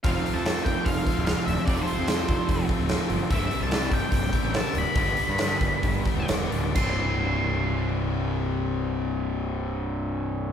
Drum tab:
CC |--------|--------|--------|--------|
HH |oooooooo|oooooooo|oooooooo|oooooooo|
SD |--o--oo-|--o---o-|--o---o-|--o---o-|
BD |o--ooo--|o--ooo--|o--ooo--|o--ooo--|

CC |x-------|--------|
HH |--------|--------|
SD |--------|--------|
BD |o-------|--------|